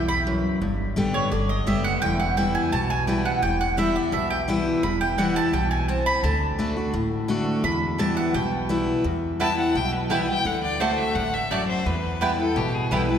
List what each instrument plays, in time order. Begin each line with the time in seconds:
Already playing: upright bass B1, steel-string acoustic guitar E2
0.08 mandolin B5
0.27 steel-string acoustic guitar F#2
0.62 upright bass G1, steel-string acoustic guitar G2
0.96 upright bass A1, steel-string acoustic guitar D3 G3 B3 G4
1.14 mandolin C#5
1.32 upright bass G1, steel-string acoustic guitar D3, mandolin D5
1.49 mandolin D#5
1.67 upright bass F#1, steel-string acoustic guitar D3 G3 B3 G4, mandolin E5
1.84 mandolin F#5
2.02 upright bass E1, steel-string acoustic guitar E2, mandolin G5
2.20 mandolin F#5
2.37 steel-string acoustic guitar E3 G3 B3 E4, mandolin G5
2.55 mandolin G#5
2.72 upright bass B1, steel-string acoustic guitar B2, mandolin A5
2.90 mandolin G#5
3.07 steel-string acoustic guitar E3 G3 B3 E4, mandolin G5
3.25 mandolin F#5
3.42 upright bass E1, steel-string acoustic guitar E2, mandolin G5
3.61 mandolin F#5
3.77 steel-string acoustic guitar E3 G3 B3 E4, mandolin E5
3.96 mandolin D5
4.12 upright bass B1, steel-string acoustic guitar B2, mandolin E5
4.30 mandolin G5
4.48 steel-string acoustic guitar E3 G3 B3 E4
4.83 upright bass E1, steel-string acoustic guitar E2, mandolin B5
5.01 mandolin G5
5.18 steel-string acoustic guitar E3 G3 B3 E4, mandolin F#5
5.36 mandolin A5
5.53 upright bass B1, steel-string acoustic guitar B2, mandolin G5
5.71 mandolin G#5
5.88 steel-string acoustic guitar C4, mandolin A5
6.06 mandolin B5
6.23 upright bass D2, steel-string acoustic guitar D3, mandolin A5
6.59 steel-string acoustic guitar D3 A3 D4 F#4
6.76 steel-string acoustic guitar D4 F#4
6.94 upright bass A1, steel-string acoustic guitar A2
7.28 steel-string acoustic guitar D3 A3 D4 F#4
7.64 upright bass E2, steel-string acoustic guitar E2, mandolin B5
7.98 steel-string acoustic guitar E3 G3 B3 E4, mandolin A5
8.17 mandolin F#5
8.34 upright bass B1, steel-string acoustic guitar B2, mandolin G5
8.69 steel-string acoustic guitar E3 G3 B3 E4
9.04 steel-string acoustic guitar E2, upright bass E2
9.40 steel-string acoustic guitar E3 G3 B3 E4, mandolin B3 E4 B4 G5, fiddle A5
9.59 fiddle F#5
9.75 upright bass B1, steel-string acoustic guitar B2, fiddle G5
9.94 fiddle B4
10.10 steel-string acoustic guitar E3 G3 B3 E4, mandolin B3 E4 B4 G5, fiddle E5
10.27 steel-string acoustic guitar B3 E4, fiddle G5
10.45 upright bass D2, steel-string acoustic guitar D3, fiddle F#5
10.63 fiddle D5
10.80 steel-string acoustic guitar D3 A3 D4 F#4, mandolin A3 F#4 D5 A5, fiddle C5
10.98 fiddle E5
11.15 upright bass A1, steel-string acoustic guitar G2, fiddle F#5
11.34 fiddle E5
11.51 steel-string acoustic guitar F#2, mandolin A3 F#4 D5 A5, fiddle D5
11.69 fiddle C5
11.86 upright bass E2, steel-string acoustic guitar E2, fiddle B4
12.21 steel-string acoustic guitar E3 G3 B3 E4, mandolin B3 E4 B4 G5
12.38 steel-string acoustic guitar B3 E4, fiddle A4
12.56 upright bass A1, steel-string acoustic guitar B2, fiddle G4
12.74 fiddle G#4
12.91 upright bass B1, steel-string acoustic guitar E3 G3 B3 E4, mandolin B3 E4 B4 G5, fiddle A4
13.09 steel-string acoustic guitar B3 E4, fiddle B4